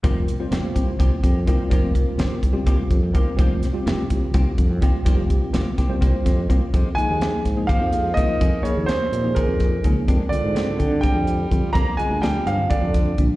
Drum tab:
HH |xxxxxxx|xxxxxxx|xxxxxxx|xxxxxxx|
SD |--o----|--o-o--|-oo----|--oo-o-|
BD |o--oooo|oo-oooo|o--oooo|oo-oooo|

HH |xxxxxxx|xxxxxxx|xxxxxxx|xxxxxxx|
SD |--oo---|--o--o-|--o----|--o--o-|
BD |o--oo-o|o---ooo|o--oo-o|o---ooo|